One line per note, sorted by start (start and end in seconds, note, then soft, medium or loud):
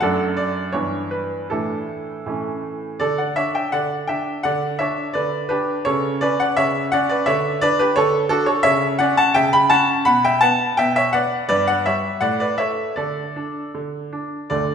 0.00 0.73 F#2 medium
0.00 0.71 F#3 soft
0.00 0.71 A3 medium
0.00 0.72 D4 soft
0.00 0.36 A4 medium
0.00 0.35 D5 medium
0.00 0.23 F#5 medium
0.37 0.71 D5 medium
0.72 1.48 G2 medium
0.72 1.46 E3 soft
0.72 1.47 B3 soft
0.72 1.47 D4 soft
0.72 1.08 C#5 medium
1.11 1.46 B4 medium
1.50 2.25 A2 medium
1.50 2.23 E3 soft
1.50 2.24 A3 soft
1.50 2.61 D4 medium
1.50 2.61 E4 medium
1.50 2.65 A4 medium
2.26 2.99 A2 medium
2.26 2.98 E3 soft
2.26 2.98 A3 soft
2.26 2.98 C#4 soft
3.00 3.36 D3 medium
3.00 3.18 A4 medium
3.00 3.18 D5 medium
3.18 3.37 D5 medium
3.18 3.37 F#5 medium
3.36 3.72 D4 medium
3.36 3.54 C#5 medium
3.36 3.54 E5 medium
3.55 3.72 E5 medium
3.55 3.73 G5 medium
3.72 4.08 D3 medium
3.72 4.07 D5 medium
3.72 3.94 F#5 loud
4.07 4.44 D4 medium
4.07 4.42 E5 medium
4.07 4.44 G5 medium
4.43 4.79 D3 medium
4.43 4.78 D5 medium
4.43 4.76 F#5 loud
4.79 5.15 D4 medium
4.79 5.13 C#5 medium
4.79 5.11 E5 medium
5.14 5.50 D3 medium
5.14 5.47 B4 medium
5.14 5.50 D5 medium
5.49 5.85 D4 medium
5.49 5.84 G4 medium
5.49 5.82 B4 medium
5.85 6.21 C#3 medium
5.85 6.20 A4 medium
5.85 6.18 C#5 loud
6.21 6.56 C#4 medium
6.21 6.39 B4 medium
6.21 6.39 D5 loud
6.40 6.57 D5 medium
6.40 6.58 F#5 loud
6.57 6.92 C#3 medium
6.57 6.90 C#5 medium
6.57 6.92 E5 loud
6.92 7.27 C#4 medium
6.92 7.08 D5 medium
6.92 7.10 F#5 loud
7.09 7.27 B4 medium
7.09 7.27 D5 loud
7.26 7.61 D3 medium
7.26 7.60 C#5 medium
7.26 7.62 E5 loud
7.61 7.96 D4 medium
7.61 7.78 B4 medium
7.61 7.79 D5 loud
7.79 7.96 G4 medium
7.79 7.97 B4 loud
7.96 8.30 D3 medium
7.96 8.28 A4 medium
7.96 8.17 C#5 loud
8.29 8.65 D4 medium
8.29 8.47 F#4 medium
8.29 8.46 A4 loud
8.46 8.64 A4 medium
8.46 8.63 C#5 loud
8.63 8.99 C#3 medium
8.63 8.98 C#5 loud
8.63 8.85 E5 loud
8.99 9.35 C#4 medium
8.99 9.17 D5 medium
8.99 9.17 F#5 loud
9.17 9.35 F#5 medium
9.17 9.36 A5 loud
9.34 9.71 C#3 medium
9.34 9.53 E5 medium
9.34 9.52 G5 loud
9.53 9.71 G5 medium
9.53 9.71 B5 loud
9.70 10.05 C#4 medium
9.70 10.04 F#5 medium
9.70 10.06 A5 loud
10.05 10.41 B2 medium
10.05 10.23 F#5 loud
10.05 10.24 B5 loud
10.25 10.41 E5 medium
10.25 10.42 G5 loud
10.41 10.77 B3 medium
10.41 10.76 F#5 medium
10.41 10.74 A5 loud
10.77 11.13 B2 medium
10.77 10.94 E5 medium
10.77 10.96 G5 loud
10.96 11.13 C#5 medium
10.96 11.14 E5 loud
11.13 11.48 B3 medium
11.13 11.47 D5 medium
11.13 11.45 F#5 loud
11.49 11.84 G2 medium
11.49 11.66 B4 medium
11.49 11.67 D5 loud
11.67 11.85 D5 medium
11.67 11.85 F#5 loud
11.86 12.21 G3 medium
11.86 12.20 C#5 medium
11.86 12.22 E5 loud
12.21 12.57 A2 medium
12.21 12.39 D5 medium
12.21 12.39 F#5 loud
12.40 12.58 B4 medium
12.40 12.59 D5 medium
12.58 12.96 A3 medium
12.58 12.94 C#5 medium
12.58 12.92 E5 medium
12.96 13.34 D3 medium
12.96 13.70 A4 medium
12.96 13.69 D5 medium
13.36 13.73 D4 medium
13.74 14.11 D3 medium
14.13 14.49 D4 medium
14.50 14.75 D2 medium
14.50 14.75 D3 medium
14.50 14.75 A3 soft
14.50 14.75 D4 soft
14.50 14.75 D5 medium